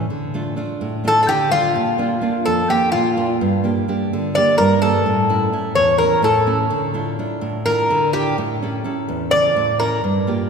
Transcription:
0.10 D3
0.34 A3 D4 F4
0.56 A3 D4 F4
0.81 A2
1.04 A3 D4 F4 A4
1.23 A4
1.28 D3 G4
1.51 A3 D4 F4
1.75 A#2
1.98 A#3 D4 F4
2.21 A#3 D4 F4
2.45 F2 A4
2.69 A#3 D4 F4 G4
2.92 A#2 F4
3.17 A#3 D4 F4
3.41 G2
3.64 A#3 D4 G4
3.88 A#3 D4 G4
4.13 D3
4.35 A#3 D4 G4 D5
4.58 G2 A#4
4.82 A#3 D4 G4 A4
5.06 A2
5.29 A3 C#4 E4
5.52 A3 C#4 E4
5.75 E2 C#5
5.98 A3 C#4 E4 A#4
6.23 A2 A4
6.47 A3 C#4 E4
6.70 D3
6.94 D4 E4 F4
7.19 D4 E4 F4
7.41 A2
7.65 D4 E4 F4 A#4
7.90 D3
8.13 D4 E4 F4 G4
8.38 A2
8.62 C#4 E4 A4
8.84 C#4 E4 A4
9.09 E2
9.31 C#3 E4 A4 D5
9.56 A2
9.80 C#4 E4 A4 A#4
10.04 G2
10.27 A#3 F4 G4

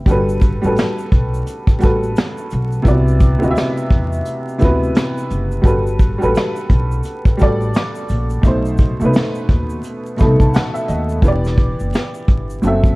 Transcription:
0.06 G1 G3 F#4 A4, kick, closed hi-hat, shaker
0.11 B4
0.29 shaker
0.41 kick, closed hi-hat, shaker
0.62 A1 G3 F#4 A4, shaker
0.67 B4
0.76 snare, closed hi-hat, shaker
0.99 shaker
1.12 B1, kick, closed hi-hat
1.34 shaker
1.47 closed hi-hat, shaker
1.67 kick, shaker
1.79 G3 F#4 A4, closed hi-hat, shaker
1.84 A1 B4, kick
2.03 shaker
2.16 snare, closed hi-hat, shaker
2.38 shaker
2.50 B1, closed hi-hat, shaker
2.72 shaker
2.82 C2 C3 B3 E4, kick, closed hi-hat
2.86 F#4 D5, shaker
3.08 shaker
3.20 kick, closed hi-hat, shaker
3.38 C3 B3 E4
3.42 D2 F#4 D#5, shaker
3.51 E5
3.55 snare, closed hi-hat, shaker
3.77 shaker
3.90 E2, kick, closed hi-hat
4.13 shaker
4.25 closed hi-hat, shaker
4.48 shaker
4.58 C3 B3 E4, closed hi-hat, shaker
4.62 D2 F#4 B4, kick
4.83 shaker
4.95 snare, closed hi-hat, shaker
5.18 shaker
5.30 F#1, closed hi-hat, shaker
5.52 shaker
5.62 G1 G3 F#4 A4, kick, closed hi-hat
5.66 B4, shaker
5.87 shaker
5.99 kick, closed hi-hat, shaker
6.18 G3 F#4 A4, shaker
6.23 A1 B4
6.35 snare, closed hi-hat, shaker
6.56 shaker
6.70 B1, kick, closed hi-hat
6.92 shaker
7.03 closed hi-hat, shaker
7.25 kick, shaker
7.37 G3 F#4 A4, closed hi-hat, shaker
7.42 A1 D5, kick
7.62 shaker
7.74 snare, closed hi-hat, shaker
7.95 shaker
8.09 A#1, closed hi-hat, shaker
8.30 shaker
8.41 B1 B2 A3 D#4, kick, closed hi-hat, shaker
8.47 C5
8.65 shaker
8.78 kick, closed hi-hat, shaker
9.00 C2 B2 A3 D#4, shaker
9.05 B4
9.14 snare, closed hi-hat, shaker
9.35 shaker
9.49 D#2, kick, closed hi-hat
9.70 shaker
9.83 closed hi-hat, shaker
10.06 shaker
10.17 B2 A3 D#4 B5, kick, closed hi-hat, shaker
10.21 C2 A4
10.40 A5, kick, shaker
10.54 F#5, snare, closed hi-hat, shaker
10.74 E5, shaker
10.88 D#2 D#5, closed hi-hat, shaker
11.09 shaker
11.22 E1 E3 B3, kick, closed hi-hat, shaker
11.26 G4 D5
11.44 snare, shaker
11.58 kick, closed hi-hat
11.79 F#1, shaker
11.92 snare, closed hi-hat, shaker
12.14 shaker
12.28 G1, kick, closed hi-hat
12.50 shaker
12.62 F#1 F#3 C4 A4, closed hi-hat, shaker
12.67 E5
12.84 kick, shaker

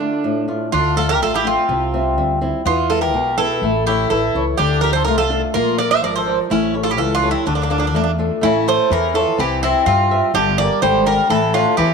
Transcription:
Already playing: D3 D4
0.00 A3 D4 F4
0.24 A2
0.48 A3 D4 F4
0.72 D2 D3 D4 F4
0.95 A3 D4 F4 A4
1.09 G4 A#4
1.21 A1 A3 F4 A4
1.34 E4 G4
1.44 A3 C4 D4 F4
1.69 C2 C3
1.94 G3 C4 E5
2.17 D2 G3
2.41 G3 C4 E4
2.65 E2 E3 B3 F4
2.90 G#3 B3 E4 F4 A4
3.01 G4 A#4
3.14 B1 B2
3.37 B3 E4 G#4 A4
3.62 A1 A3
3.87 E4 G4 A4 C#5
4.10 A1 E3 E4 A4
4.35 C#2 E4 A4 C#5
4.58 D2 D3 D4 G4
4.81 D4 F4 G4 A4 A#4
4.93 A4 C5
5.05 C2 A3 F4 A#4
5.18 F4 A4
5.30 D4 F4 A4
5.54 A#1 A#3 F4 A#4
5.78 F4 A#4 D5
5.91 C5 E5
6.02 G#1 F3 A#4 D5
6.16 A4 C5
6.26 F4 A#4 D5
6.50 A1 A3 C#4 E4
6.74 G4 A4 C#5
6.83 F4 A4
6.90 E4 G4
6.97 C#2 E3 F4 A4
7.15 D4 F4
7.22 G4 A4 C#5
7.31 C4 E4
7.46 D2 D3 A3 D4
7.55 A#3 D4
7.62 A#3 D4
7.70 A#3 D4 F4 A4
7.78 A#3 D4
7.87 A#3 D4
7.94 E2 A3 A#3 D4
8.03 A#3 D4
8.19 D4 F4 A4
8.41 A1 C#3 A3 E4
8.66 A3 E4 A4 C5 C#5
8.90 E2 E3 A#4
9.14 F3 E4 A4 C#5
9.38 C2 E3 C4 G4
9.62 C3 E4 G4 C5 E5
9.86 G2 C3 G3 F4
10.11 G4 C5 E5
10.34 G1 D3 G3 G4
10.58 A#3 G4 A#4 D5
10.82 G#1 D3 G3 C5
11.05 G3 G4 A#4 D5
11.29 A1 E3 A3 A4
11.53 D3 E4 F4 A4 C#5
11.77 E2 E3 G4

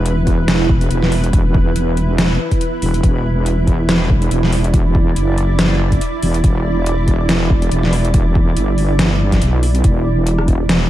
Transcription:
Already playing: E1 E4 B4
0.06 closed hi-hat
0.27 kick, closed hi-hat
0.48 snare, closed hi-hat
0.69 kick
0.81 closed hi-hat
0.91 E1, closed hi-hat
1.03 snare
1.12 open hi-hat
1.24 closed hi-hat
1.33 kick, closed hi-hat
1.54 kick
1.76 E1, closed hi-hat
1.97 closed hi-hat
2.18 snare, closed hi-hat
2.51 kick, closed hi-hat
2.61 closed hi-hat
2.82 E1, open hi-hat
2.94 closed hi-hat
3.03 E1 D5, kick, closed hi-hat
3.46 closed hi-hat
3.67 kick, closed hi-hat
3.89 snare, closed hi-hat
4.10 kick
4.22 closed hi-hat
4.31 E1, closed hi-hat
4.43 snare
4.53 open hi-hat
4.64 closed hi-hat
4.74 kick, closed hi-hat
4.95 kick
5.16 F#1, closed hi-hat
5.38 closed hi-hat
5.59 snare, closed hi-hat
5.92 kick, closed hi-hat
6.01 closed hi-hat
6.23 E1, open hi-hat
6.34 closed hi-hat
6.44 E1, kick, closed hi-hat
6.86 closed hi-hat
7.08 kick, closed hi-hat
7.29 snare, closed hi-hat
7.50 kick
7.62 closed hi-hat
7.71 E1, closed hi-hat
7.83 snare
7.93 open hi-hat
8.05 closed hi-hat
8.14 kick, closed hi-hat
8.35 kick
8.57 G1, closed hi-hat
8.78 open hi-hat
8.99 snare, closed hi-hat
9.32 kick, snare, closed hi-hat
9.42 B1, closed hi-hat
9.63 open hi-hat
9.75 closed hi-hat
9.84 E1 E4 B4, kick, closed hi-hat
10.27 closed hi-hat
10.38 cross-stick
10.48 kick, closed hi-hat
10.69 snare, closed hi-hat

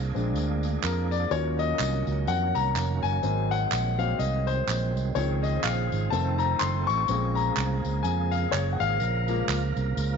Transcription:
Already playing: C2 F3 A#3 D4 G#4 A#4
0.14 A#1 G#3 C4 D4, tambourine
0.35 D2, tambourine
0.63 tambourine
0.83 F2 A#4, clap, tambourine
1.11 D5, tambourine
1.30 D#2 D#3 F#3 C#4 F4 C#5, tambourine
1.59 D#5, tambourine
1.79 C2, clap, tambourine
2.07 C#2, tambourine
2.27 F2 F#5, tambourine
2.55 C2 A#5, tambourine
2.75 F1, clap, tambourine
3.03 F#1 G#5, tambourine
3.22 G#1 F#3 G#3 A#3 C4, tambourine
3.51 F#5, tambourine
3.72 A#1, clap, tambourine
3.98 F#3 A#3 C4 F5, tambourine
4.19 C2 D#5, tambourine
4.47 C5, tambourine
4.68 A#1, clap, tambourine
4.96 C2, tambourine
5.15 C#2 C#3 D#3 F3 C4 G#4 C#5, tambourine
5.43 D#5, tambourine
5.63 A#1 F5, clap, tambourine
5.92 G#1, tambourine
6.10 F1 D#3 F3 A3 C4 D#4 A4 A5, tambourine
6.38 A#5, tambourine
6.59 F#1 C6, clap, tambourine
6.87 A1 C#6, tambourine
7.08 A#1 C#3 G#3 A#3 C4 G#4, tambourine
7.35 A#5, tambourine
7.57 C2, clap, tambourine
7.84 C#2, tambourine
8.03 F2 G#5, tambourine
8.31 F5, tambourine
8.52 F#1 C#5, clap, tambourine
8.73 F#5
8.80 G#1 F5, tambourine
9.00 A#1 A#4, tambourine
9.28 F3 G#3 A#3, tambourine
9.48 C#2, clap, tambourine
9.76 C2, tambourine
9.97 C#2, tambourine

